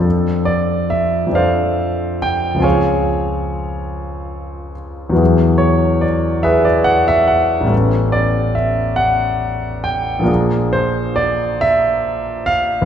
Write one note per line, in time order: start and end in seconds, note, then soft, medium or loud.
0.00 1.25 F2 soft
0.00 1.27 F3 soft
0.00 1.29 C4 soft
0.00 1.30 D4 soft
0.00 1.32 A4 soft
0.45 0.91 D5 medium
0.90 1.36 E5 medium
1.27 2.55 F2 soft
1.27 2.55 F3 soft
1.27 2.57 C4 soft
1.33 2.58 D4 soft
1.33 2.59 A4 soft
1.33 2.18 C5 medium
1.33 2.18 D5 soft
1.33 2.22 F5 medium
2.22 2.64 G5 medium
2.54 5.11 C#2 soft
2.54 5.12 F3 soft
2.59 5.13 C4 soft
2.59 5.13 F4 soft
2.59 5.15 G#4 soft
2.59 4.75 G#5 medium
2.64 4.72 C#5 medium
2.64 4.72 F5 medium
5.09 7.63 E2 soft
5.09 7.64 F#3 soft
5.09 7.64 B3 soft
5.15 7.66 E4 soft
5.15 6.43 G#4 soft
5.58 6.02 C#5 medium
6.01 6.45 D5 medium
6.43 6.65 G#4 medium
6.43 6.65 B4 medium
6.43 6.66 E5 medium
6.65 6.87 D5 medium
6.84 7.08 F#5 medium
7.08 7.30 E5 medium
7.27 7.71 F#5 medium
7.61 10.19 A1 soft
7.61 10.21 G3 soft
7.65 10.22 B3 soft
7.65 10.23 C#4 soft
7.65 10.23 A4 soft
8.12 8.54 D5 medium
8.55 8.97 E5 medium
8.96 9.85 F#5 medium
9.84 10.28 G5 medium
10.19 12.81 A#1 soft
10.19 12.83 F3 soft
10.24 12.84 A#3 soft
10.24 12.85 D4 soft
10.24 12.85 G#4 soft
10.73 11.17 C5 medium
11.16 11.60 D5 medium
11.61 12.47 E5 medium
12.46 12.85 F5 medium
12.82 12.85 D2 medium